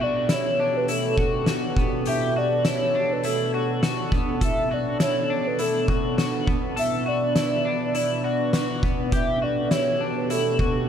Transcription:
Already playing: ambient pad B2 B3 D4 F#4 G4 A4
0.01 clean electric guitar F#4, soft synth lead D5
0.29 clean electric guitar E4, snare, closed hi-hat
0.34 soft synth lead C#5
0.60 clean electric guitar D4
0.77 soft synth lead B4
0.88 clean electric guitar E4, soft synth lead A4, closed hi-hat
1.18 clean electric guitar F#4, kick
1.46 clean electric guitar F#4, snare, closed hi-hat
1.77 clean electric guitar B3, kick
2.06 clean electric guitar G4, soft synth lead E5, closed hi-hat
2.36 clean electric guitar F#4, soft synth lead D5
2.65 clean electric guitar E4, soft synth lead C#5, snare, closed hi-hat
2.95 clean electric guitar D4
3.12 soft synth lead B4
3.23 clean electric guitar E4, soft synth lead A4, closed hi-hat
3.54 clean electric guitar F#4
3.83 clean electric guitar F#4, snare, closed hi-hat
4.12 clean electric guitar B3, kick
4.41 ambient pad B2, clean electric guitar A4, soft synth lead E5, kick, closed hi-hat
4.71 clean electric guitar F#4, soft synth lead D5
5.00 clean electric guitar E4, soft synth lead C#5, snare, closed hi-hat
5.30 clean electric guitar D4
5.47 soft synth lead B4
5.59 clean electric guitar E4, soft synth lead A4, closed hi-hat
5.88 clean electric guitar F#4, kick
6.18 clean electric guitar F#4, snare, closed hi-hat
6.47 clean electric guitar B3, kick
6.76 clean electric guitar A4, ambient pad B4, soft synth lead E5, closed hi-hat
7.06 clean electric guitar F#4, soft synth lead D5
7.36 clean electric guitar E4, snare, closed hi-hat
7.65 clean electric guitar D4
7.95 clean electric guitar E4, soft synth lead D5, closed hi-hat
8.24 clean electric guitar F#4
8.53 clean electric guitar F#4, snare, closed hi-hat
8.83 clean electric guitar B3, kick
9.12 ambient pad F#4 G4 A4, clean electric guitar G4, soft synth lead E5, kick, closed hi-hat
9.42 clean electric guitar F#4, soft synth lead D5
9.71 clean electric guitar E4, soft synth lead C#5, snare, closed hi-hat
10.01 clean electric guitar D4
10.18 soft synth lead B4
10.30 clean electric guitar E4, soft synth lead A4, closed hi-hat
10.59 clean electric guitar F#4, kick

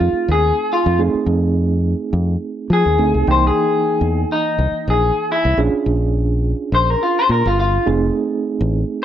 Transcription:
Already playing: reed electric piano A3 C4 D#4 G#4, clean electric guitar F4
0.00 fingered electric bass F2
0.13 muted fingered electric bass stroke
0.28 fingered electric bass D#2, clean electric guitar G#4
0.73 clean electric guitar F4
0.86 fingered electric bass F2
0.99 reed electric piano A3 C4 D#4 G#4
1.14 muted fingered electric bass stroke
1.26 fingered electric bass F2
2.13 fingered electric bass F2
2.70 fingered electric bass F3, clean electric guitar G#4
2.86 fingered electric bass D#2
2.98 fingered electric bass D2, reed electric piano A3 C4 D#4 G#4
3.14 fingered electric bass C2
3.27 fingered electric bass C2, reed electric piano E3 A#3 D#4 G5, clean electric guitar C5
3.47 clean electric guitar G#4
4.01 fingered electric bass E2
4.32 clean electric guitar D#4
4.58 fingered electric bass C2
4.71 muted fingered electric bass stroke
4.88 fingered electric bass A#1, clean electric guitar G#4
5.32 clean electric guitar E4
5.45 fingered electric bass C2
5.57 fingered electric bass A#1, reed electric piano C#4 D4 F4 G#4
5.73 muted fingered electric bass stroke
5.86 fingered electric bass A#1
6.72 fingered electric bass A#1, clean electric guitar C5
6.90 clean electric guitar A#4
7.03 clean electric guitar F4
7.19 clean electric guitar C5
7.29 fingered electric bass A#2, clean electric guitar A#4
7.46 fingered electric bass G1, clean electric guitar F4
7.60 clean electric guitar F4
7.86 fingered electric bass F1, reed electric piano A3 C4 D#4 G#4
8.61 fingered electric bass A1

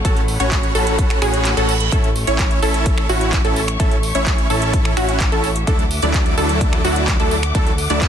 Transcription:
Already playing: string section A3 C#5 F#5
0.05 analog synth bass A1, supersaw synth C#4 F#4 A4, synth pluck A4, string section B5, kick, closed hi-hat
0.17 closed hi-hat
0.28 open hi-hat
0.40 analog synth bass A1, supersaw synth C#4 F#4 C#5, synth pluck C#5, closed hi-hat
0.52 kick, clap, closed hi-hat
0.63 closed hi-hat
0.75 analog synth bass A1, supersaw synth C#4 F#4 A4, synth pluck A4, open hi-hat
0.87 closed hi-hat
0.99 kick, closed hi-hat, reverse cymbal
1.10 finger snap, closed hi-hat
1.22 analog synth bass A1, supersaw synth C#4 F#4 G#4, synth pluck G#4, finger snap, open hi-hat
1.34 closed hi-hat
1.45 clap, closed hi-hat
1.57 analog synth bass A1, supersaw synth C#4 F#4 A4, synth pluck A4, closed hi-hat
1.69 open hi-hat
1.80 closed hi-hat
1.92 analog synth bass A1, supersaw synth C#4 E4 A4, synth pluck A4, string section C#5 E5 C#6, kick, closed hi-hat
2.04 closed hi-hat
2.16 open hi-hat
2.27 analog synth bass A1, supersaw synth C#4 E4 C#5, synth pluck C#5, closed hi-hat
2.39 kick, clap, closed hi-hat
2.51 closed hi-hat
2.62 analog synth bass A1, supersaw synth C#4 E4 A4, synth pluck A4, open hi-hat
2.74 closed hi-hat
2.86 kick, closed hi-hat
2.98 finger snap
3.09 analog synth bass A1, supersaw synth C#4 E4 F#4, synth pluck F#4, open hi-hat
3.21 closed hi-hat
3.33 kick, clap, closed hi-hat
3.45 analog synth bass A1, supersaw synth C#4 E4 A4, synth pluck A4, closed hi-hat
3.56 open hi-hat
3.68 finger snap, closed hi-hat
3.80 analog synth bass A1, supersaw synth C#4 E4 A4, synth pluck A4, kick, closed hi-hat
3.91 closed hi-hat
4.03 open hi-hat
4.15 analog synth bass A1, supersaw synth C#4 E4 C#5, synth pluck C#5, closed hi-hat
4.26 kick, clap, closed hi-hat
4.38 closed hi-hat
4.50 analog synth bass A1, supersaw synth C#4 E4 A4, synth pluck A4, open hi-hat
4.62 closed hi-hat
4.73 kick, closed hi-hat
4.85 finger snap
4.97 analog synth bass A1, supersaw synth C#4 E4 F#4, synth pluck F#4, finger snap, open hi-hat
5.09 closed hi-hat
5.20 kick, clap, closed hi-hat
5.32 analog synth bass A1, supersaw synth C#4 E4 A4, synth pluck A4, closed hi-hat
5.44 open hi-hat
5.56 closed hi-hat
5.67 analog synth bass D2, supersaw synth F#3 A3 D4 E4 A4, string section A3 F#5 D6, synth pluck A4, kick, closed hi-hat
5.79 closed hi-hat
5.91 open hi-hat
6.02 analog synth bass D2, supersaw synth F#3 A3 D4 E4 D5, synth pluck D5, closed hi-hat
6.14 kick, clap, closed hi-hat
6.26 closed hi-hat
6.38 analog synth bass D2, supersaw synth F#3 A3 D4 E4 A4, synth pluck A4, open hi-hat
6.49 closed hi-hat
6.61 kick, closed hi-hat
6.73 finger snap
6.84 analog synth bass D2, supersaw synth F#3 A3 D4 E4 F#4, synth pluck F#4, open hi-hat
6.96 closed hi-hat
7.08 kick, clap, closed hi-hat
7.20 analog synth bass D2, supersaw synth F#3 A3 D4 E4 A4, synth pluck A4, closed hi-hat
7.31 open hi-hat
7.43 finger snap, closed hi-hat
7.55 analog synth bass D2, supersaw synth F#3 A3 D4 E4 A4, synth pluck A4, kick, closed hi-hat
7.67 closed hi-hat
7.78 open hi-hat
7.90 analog synth bass D2, supersaw synth F#3 A3 D4 E4 D5, synth pluck D5, closed hi-hat
8.01 kick, clap, closed hi-hat

